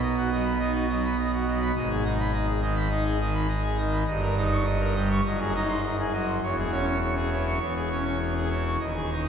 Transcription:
pipe organ
Already playing: B1 B2
0.03 D#5
0.17 F#4
0.32 F#3 D#5
0.45 B5
0.60 D#4 D#5
0.74 F#4
0.88 F#3 D#5
1.04 B5
1.18 D#5
1.33 F#4
1.47 F#3 D#5
1.62 B5
1.76 G#1 G#2 D#5
1.91 G#4
2.05 D#4 D#5
2.19 B5
2.33 D#5
2.47 G#4
2.62 D#3 D#5
2.76 B5
2.91 D#4 D#5
3.06 G#4
3.20 D#3 D#5
3.34 B5
3.49 D#5
3.64 G#4
3.78 D#3 D#5
3.93 B5
4.07 G1 G2 D#5
4.22 A#4
4.37 D#4 D#5
4.52 C#6
4.66 D#5
4.81 A#4
4.95 G3 D#5
5.10 C#6
5.26 F#1 F#2 D#5
5.40 G#4
5.55 D#4 D#5
5.69 C6
5.83 D#5
6.00 G#4
6.13 F#3 D#5
6.28 C6
6.43 E1 E2 C#5
6.58 G#4
6.72 C#4 C#5
6.87 C#6
7.02 C#5
7.16 G#4
7.31 E3 C#5
7.46 C#6
7.60 E1 E2 C#5
7.76 G#4
7.91 C#4 C#5
8.05 C#6
8.21 C#5
8.35 G#4
8.50 E3 C#5
8.66 C#6
8.80 D#1 D#2 D#5
8.95 G#4
9.12 D#4 D#5

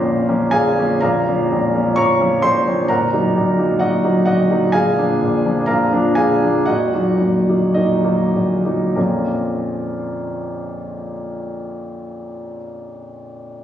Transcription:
grand piano
Already playing: A#0 A#1 F3 A#3 C#4 A#4 C5 F5 A#5 C6
0.03 A#0 A#1
0.28 F3 A#3 C#4
0.51 A#0 A#1 G#4 F5 G#5
0.78 F3 A#3 C#4
1.01 A#0 A#1 A#4 F5 A#5
1.28 F3 A#3 C#4
1.52 A#0 A#1
1.75 F3 A#3 C#4
1.96 A#0 A#1 C#5 A#5 C#6
2.21 F3 A#3 C#4
2.42 A#0 A#1 C5 C6
2.67 F3 A#3 C#4
2.88 A#0 A#1 A#4 F#5 A#5
3.13 F#3 A#3 D#4
3.36 A#0 A#1
3.59 F#3 A#3 D#4
3.79 A#0 A#1 F#4 D#5 F#5
4.04 F#3 A#3 D#4
4.25 A#0 A#1 F#4 D#5 F#5
4.51 F#3 A#3 D#4
4.72 A#0 A#1 G#4 F5 G#5
4.98 F3 A#3 D4
5.21 A#0 A#1
5.45 F3 A#3 D4
5.66 A#0 A#1 A#4 F5 A#5
5.92 F3 A#3 D4
6.15 A#0 A#1 G#4 F5 G#5
6.42 F3 A#3 D4
6.66 A#0 A#1 F#4 D#5 F#5
6.94 F#3 A#3 D#4
7.21 A#0 A#1
7.49 F#3 A#3 D#4
7.74 A#0 A#1 D#4 A#4 D#5
8.04 F#3 A#3 D#4
8.34 A#0 A#1
8.65 F#3 A#3 D#4
8.95 A#1 F2 F3 A#3 C#4 F4 A#4

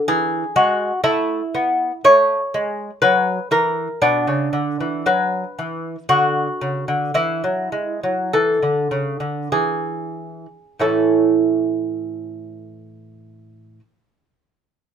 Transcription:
lute
0.08 E3 G#4
0.56 G#3 F#4
1.04 A3 E4
1.55 B3
2.04 A3 C#5
2.54 G#3
3.02 F#3 B4
3.51 E3 A#4
4.02 B2 D4
4.27 C#3
4.53 D3
4.80 E3
5.06 F#3 B4
5.59 E3
6.09 D3 F#4
6.61 C#3
6.88 D3
7.14 E3 E4
7.44 F#3
7.72 G#3
8.03 F#3
8.33 E3 A4
8.62 D3
8.91 C#3
9.20 D3
9.52 E3 G#4
10.80 A2 E3 C#4 E4 A4

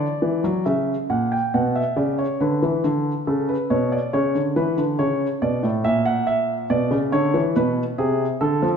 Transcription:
grand piano
Already playing: D5
0.22 E3
0.44 F#3
0.66 C#3 E5
1.10 A#2 F#5
1.32 G5
1.54 B2 F#5
1.75 E5
1.96 C#3 D5
2.18 C#5
2.40 D3 B4
2.62 E3
2.84 D3
3.27 C#3 A4
3.49 B4
3.70 B2 C#5
3.92 D5
4.13 C#3 C#5
4.35 D3
4.56 E3 B4
4.77 D3
4.99 C#3 C#5
5.42 B2 D5
5.63 A2
5.84 A#2 E5
6.05 F#5
6.27 E5
6.70 B2 D5
6.91 C#3
7.12 D3 C#5
7.34 E3
7.56 B2 B4
7.98 C3 G#4
8.41 D3 A4
8.62 F3

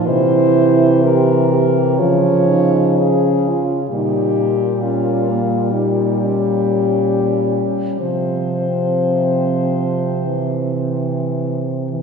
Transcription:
french horn
Already playing: D#4
0.06 C3 E3 E4 C5
1.03 G4 A#4
1.53 G4
1.97 C#3 F3 F4 C#5
2.48 D#4
2.98 C#4 G#4
3.48 F4
3.90 A#2 G3 G4
3.94 D#4
4.81 C#4 F4
5.28 A#3
5.73 D#4 G4
6.25 C#4
8.00 C3 F3 C4 C5
10.25 E3
11.90 E3

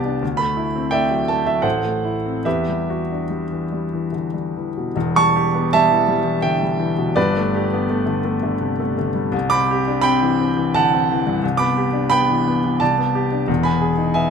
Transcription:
grand piano
Already playing: C2 B3 G4 D5 A5
0.05 D4
0.22 D2
0.37 A3 B5
0.57 E4
0.75 C4
0.91 A3 D5 E5 G5
1.10 F#3
1.28 A3 A5
1.46 F#3 E5
1.62 A1 A4 C5 F#5
1.84 A3
2.05 E4
2.26 C4
2.45 E2 G4 B4 E5
2.69 G3
2.90 F#4
3.12 D4
3.30 G3
3.52 E3
3.72 G3
3.93 E3
4.12 D3
4.34 G3
4.57 E3
4.77 B2
4.96 E1 E2
5.16 G3 A5 C#6
5.36 G4
5.55 B3
5.73 G3 E5 A5
5.91 E3
6.08 G3
6.24 E3
6.42 D3 E5 G5
6.62 G3
6.80 E3
6.98 B2
7.16 G1 G2 B4 D5
7.37 A3
7.55 G4
7.73 B3
7.90 A3
8.06 D3
8.25 A3
8.43 D3
8.61 C3
8.80 A3
8.98 D3
9.15 G3
9.32 C2
9.50 C4 B5 D6
9.71 G4
9.88 D4
10.01 C4 G5 B5
10.22 E3
10.41 C4
10.57 E3
10.74 D3 F#5 A5
10.94 C4
11.12 E3
11.27 G2
11.44 C2
11.57 B3 B5 D6
11.77 G4
11.93 D4
12.10 B3 G5 B5
12.30 E3
12.48 B3
12.64 E3
12.80 C2 D5 A5
12.98 B3
13.15 G4
13.32 D4
13.48 E1 E2
13.63 B3 G#5 B5
13.81 G#4
13.97 D#4
14.14 B3 E5 G#5

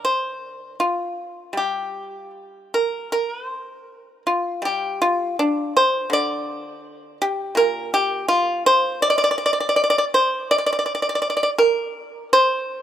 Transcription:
pipa
Already playing: D3
0.05 C5
0.80 F4
1.53 G3
1.57 G4
2.74 A#4
3.12 A#4
3.32 B4
3.45 C5
4.27 F4
4.62 G3 G4
5.02 F4
5.39 D4
5.77 C5
6.10 D3 D5
7.22 G4
7.55 A#2 A#4
7.94 G4
8.28 F4
8.66 C5
9.02 D5
9.10 D5
9.18 D5
9.24 D5
9.31 D5
9.38 D5
9.46 D5
9.53 D5
9.60 D5
9.69 D5
9.76 D5
9.84 D5
9.90 D5
9.98 D5
10.14 C5
10.51 D5
10.58 D5
10.66 D5
10.73 D5
10.79 D5
10.86 D5
10.95 D5
11.02 D5
11.09 D5
11.15 D5
11.22 D5
11.30 D5
11.37 D5
11.43 D5
11.58 A#4
12.33 C5

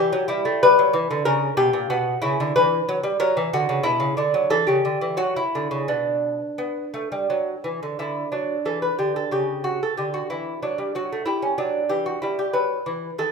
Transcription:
lute
Already playing: E3 G4
0.13 F#3
0.28 G3 E4
0.45 A3
0.63 G3 B4
0.79 F#3
0.93 E3
1.11 D3
1.25 C#3 A#4
1.57 B2 G4
1.73 A#2
1.90 B2 F#4
2.22 C#3 E4
2.40 D3
2.56 E3 B4
2.89 F#3
3.04 G3
3.20 F#3 A#4
3.37 E3
3.53 D3 F#4
3.69 C#3
3.83 B2 E4
4.00 C#3
4.17 D3 D4
4.34 F#3
4.50 E3 A4
4.67 C#3 G4
4.85 D3
5.01 E3
5.17 F#3 F#4
5.36 E4
5.55 D3
5.71 C#3
5.88 B2 D4
6.58 B3
6.94 A3
7.12 G3
7.30 F#3
7.64 E3
7.83 D3
7.99 D3 E4
8.32 F#3 D4
8.65 E3 A4
8.82 B4
8.99 D3 G4
9.16 A4
9.31 C#3 G4
9.64 F#4
9.83 A4
9.97 D3 G4
10.14 F#4
10.30 E3 E4
10.63 F#3 D4
10.78 G3
10.95 F#3 F#4
11.12 A3
11.26 G3 E4
11.42 C#4
11.58 F#3 D4
11.89 E3 G4
12.06 F#4
12.22 G3 E4
12.39 G4
12.53 F#3 B4
12.86 E3
13.18 D#3 A4

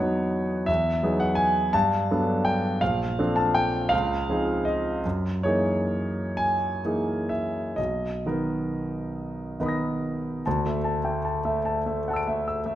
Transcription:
grand piano
Already playing: E2 F#3 B4 C#5 D#5
0.00 B3 D#4 F#4
0.66 E2 E5
1.03 F#3 B3 D#4 G#4
1.20 F#5
1.35 G#5
1.73 G2 A5
2.11 F#3 B3 D4 A4
2.45 G5
2.81 A#1 F5
3.19 F3 C4 D4 A4
3.36 A5
3.55 G5
3.89 C#2 F5
4.29 F3 C4 D#4 G#4
4.65 D#5
5.05 F#2
5.43 E3 A#3 D#4 G#4 C#5
6.37 G#5
6.85 E3 A#3 D#4 G#4
7.29 E5
7.76 B1 D#5
8.26 D#3 B3 D#4 A#4
9.60 D#3 B3 D#4 A#4 D#5 B5
9.66 D#6 A#6
10.46 D2 A5
10.66 A3 E5
10.84 A5
11.05 A3 G5
11.25 A5
11.45 A3 E5
11.65 A5
11.86 A3 E5
12.08 F#5 A5
12.14 E6 D7
12.27 A3 E5
12.48 E6
12.66 A3 E5

